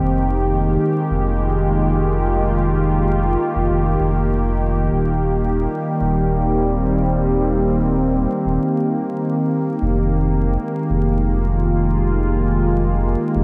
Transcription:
Already playing: analog synth pad D#3 A#3 C4 G4
0.02 sub bass F1
0.41 analog synth pad G#3
1.11 sub bass F1, analog synth pad F4
3.56 sub bass F1
3.70 sub bass F1
4.00 sub bass F1
4.92 sub bass D#1
5.49 analog synth pad G3
6.01 sub bass D#1
6.30 analog synth pad C4
8.46 sub bass D#1
9.82 sub bass F1
10.08 analog synth pad G#3
10.90 sub bass F1
11.19 analog synth pad F4
13.35 sub bass F1

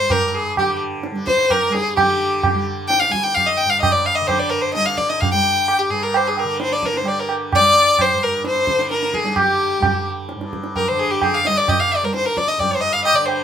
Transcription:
Already playing: tanpura D3 G3, violin C5
0.00 tanpura G2
0.10 violin A#4, tabla na, tabla ge
0.28 violin A#4
0.34 violin G#4
0.56 tanpura D3, violin G4, tabla na, tabla ge
1.03 tabla te
1.12 tanpura G3, tabla te
1.27 violin C5, tabla ke
1.38 tabla te
1.50 violin A#4, tabla na, tabla ge
1.69 tanpura G3, violin G#4
1.75 tabla te
1.96 tanpura D3, violin G4, tabla na, tabla ge
2.43 tabla na, tabla ge
2.53 tanpura G3
2.88 violin G5, tabla te
3.00 violin F5, tabla te
3.09 tanpura G3, violin G#5
3.13 tabla ke
3.23 violin G5, tabla te
3.35 violin F5, tabla tin, tabla ge
3.47 violin D#5
3.58 violin G5
3.65 tanpura G2
3.70 violin F5
3.81 violin D#5, tabla na, tabla ge
3.92 violin D5
4.06 violin F5
4.16 violin D#5
4.21 tanpura D3
4.27 violin C5, tabla na, tabla ge
4.39 violin D5
4.50 violin A#4
4.62 violin C5
4.74 tanpura G3, violin D#5, tabla te
4.86 violin F5, tabla te
4.98 violin D5, tabla ke
5.09 violin D#5, tabla te
5.21 violin F5, tabla tin, tabla ge
5.32 tanpura G3, violin G5
5.68 tabla na
5.79 violin G4
5.90 tanpura G2, violin G#4
6.03 violin A#4
6.14 violin C5, tabla na
6.28 violin G#4
6.37 violin A#4, tabla na
6.45 tanpura D3
6.60 violin C5, tabla te
6.72 violin D5, tabla te
6.83 violin A#4, tabla ke
6.94 violin C5, tabla te
7.02 tanpura G3, tabla tin
7.08 violin D5
7.19 violin A#4
7.29 tabla na
7.53 violin D5, tabla na, tabla ge
7.58 tanpura G3
7.99 violin C5, tabla na, tabla ge
8.13 tanpura G2
8.23 violin A#4
8.44 violin C5, tabla te
8.56 tabla te
8.67 tanpura D3, tabla ke
8.79 tabla te
8.91 violin A#4, tabla te
9.03 tabla te
9.14 violin G#4, tabla ke
9.24 tanpura G3, tabla te
9.32 violin G#4
9.36 violin G4, tabla na, tabla ge
9.80 tanpura G3, tabla na, tabla ge
10.29 tabla te
10.35 tanpura G2
10.41 tabla te
10.53 tabla ke
10.64 tabla te
10.76 violin A#4, tabla tin, tabla ge
10.88 tanpura D3, violin C5
10.99 violin G#4
11.11 violin G4
11.22 violin G#4, tabla na, tabla ge
11.34 violin F5
11.45 tanpura G3, violin D#5, tabla te
11.57 violin D5
11.68 violin D#5, tabla na, tabla ge
11.80 violin F5
11.92 violin D5
12.03 tanpura G3, violin A#4
12.14 violin C5, tabla te
12.25 violin A#4, tabla te
12.37 violin D5, tabla ke
12.48 violin D#5, tabla te
12.58 tanpura G2, violin D5, tabla tin, tabla ge
12.71 violin C5
12.81 violin D#5
12.93 violin F5
13.04 violin D#5, tabla na
13.13 tanpura D3, violin D5
13.26 violin C5, tabla na

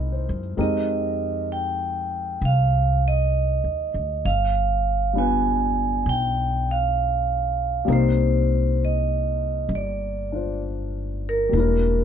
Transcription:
Already playing: upright bass C2, grand piano G#3 C4 D#4 E4 A#4 C5 D#5, vibraphone D#5
0.12 grand piano C5
0.29 upright bass F#2
0.57 upright bass F2, grand piano G#3 C4 D#4 G4 A#4, vibraphone D#5
1.52 vibraphone G5
2.41 upright bass C2, vibraphone F5
3.08 vibraphone D#5
3.64 upright bass D#2
3.94 upright bass D2
4.25 upright bass G1, vibraphone F5
5.13 grand piano G3 B3 D4 F4
5.18 grand piano B4, vibraphone G#5
6.06 upright bass B1, vibraphone G5
6.71 vibraphone F5
7.85 upright bass C2, grand piano G3 A#3 C4 D#4
7.90 grand piano A#4, vibraphone C5
8.85 vibraphone D#5
9.69 upright bass G1
9.75 vibraphone D5
10.32 grand piano D4 F4 C5
11.29 vibraphone A#4
11.49 grand piano G3 A#3
11.53 upright bass E1, grand piano D4 E4
11.60 grand piano A#4

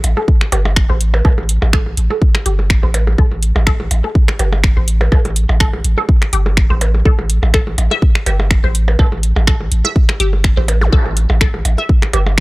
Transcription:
0.04 sub bass A1, closed hi-hat, percussion blips
0.17 synth arpeggio sound A4, percussion blips
0.28 kick
0.41 finger snap, percussion blips
0.52 sub bass G1, synth arpeggio sound G4, closed hi-hat, percussion blips
0.65 percussion blips
0.76 finger snap, kick
0.90 sub bass A1, synth arpeggio sound C5, percussion blips
1.01 closed hi-hat
1.14 percussion blips
1.25 sub bass A1, synth arpeggio sound A4, kick, percussion blips
1.38 percussion blips
1.49 closed hi-hat
1.62 sub bass A1, percussion blips
1.73 synth arpeggio sound A4, finger snap, kick
1.86 percussion blips
1.97 sub bass A1, closed hi-hat
2.11 synth arpeggio sound A4, percussion blips
2.22 kick
2.35 finger snap, percussion blips
2.46 sub bass G1, synth arpeggio sound G4, closed hi-hat
2.59 percussion blips
2.70 finger snap, kick
2.83 sub bass A1, synth arpeggio sound C5, percussion blips
2.94 closed hi-hat, percussion blips
3.07 percussion blips
3.18 sub bass A1, synth arpeggio sound A4, kick
3.32 percussion blips
3.43 closed hi-hat
3.56 sub bass A1, percussion blips
3.67 synth arpeggio sound A4, finger snap, kick
3.80 percussion blips
3.91 sub bass A1, closed hi-hat, percussion blips
4.04 synth arpeggio sound A4, percussion blips
4.15 kick
4.28 finger snap, percussion blips
4.39 sub bass G1, synth arpeggio sound G4, closed hi-hat, percussion blips
4.53 percussion blips
4.64 finger snap, kick
4.77 sub bass A1, synth arpeggio sound C5, percussion blips
4.88 closed hi-hat
5.01 percussion blips
5.12 sub bass A1, synth arpeggio sound A4, kick, percussion blips
5.25 closed hi-hat, percussion blips
5.36 closed hi-hat
5.49 sub bass A1, percussion blips
5.60 synth arpeggio sound A4, finger snap, kick
5.73 percussion blips
5.84 sub bass A1, closed hi-hat
5.98 synth arpeggio sound A4, percussion blips
6.09 kick
6.22 finger snap, percussion blips
6.33 sub bass G1, synth arpeggio sound G4, closed hi-hat
6.46 percussion blips
6.57 finger snap, kick
6.70 sub bass A1, synth arpeggio sound C5, percussion blips
6.81 closed hi-hat, percussion blips
6.94 percussion blips
7.05 sub bass A1, synth arpeggio sound A4, kick
7.19 percussion blips
7.30 closed hi-hat
7.43 sub bass A1, percussion blips
7.54 synth arpeggio sound A4, finger snap, kick
7.67 percussion blips
7.78 sub bass A1, closed hi-hat, percussion blips
7.91 synth arpeggio sound E5, percussion blips
8.02 kick
8.15 finger snap, percussion blips
8.26 sub bass G1, synth arpeggio sound G4, closed hi-hat, percussion blips
8.40 percussion blips
8.51 finger snap, kick
8.64 sub bass A1, synth arpeggio sound C5, percussion blips
8.75 closed hi-hat
8.88 percussion blips
8.99 sub bass A1, synth arpeggio sound A4, kick, percussion blips
9.12 percussion blips
9.23 closed hi-hat
9.36 sub bass A1, percussion blips
9.47 synth arpeggio sound A4, finger snap, kick
9.61 percussion blips
9.72 sub bass A1, closed hi-hat
9.85 synth arpeggio sound E5, percussion blips
9.96 kick
10.09 finger snap, percussion blips
10.20 sub bass G1, synth arpeggio sound G4, closed hi-hat
10.33 percussion blips
10.44 finger snap, kick
10.57 sub bass A1, synth arpeggio sound C5, percussion blips
10.68 closed hi-hat, percussion blips
10.81 zap, percussion blips
10.93 sub bass A1, synth arpeggio sound A4, kick
11.06 percussion blips
11.17 closed hi-hat
11.30 sub bass A1, percussion blips
11.41 synth arpeggio sound A4, finger snap, kick
11.54 percussion blips
11.65 sub bass A1, closed hi-hat, percussion blips
11.78 synth arpeggio sound E5, percussion blips
11.89 kick
12.02 finger snap, percussion blips
12.13 sub bass G1, synth arpeggio sound G4, closed hi-hat, percussion blips
12.27 percussion blips

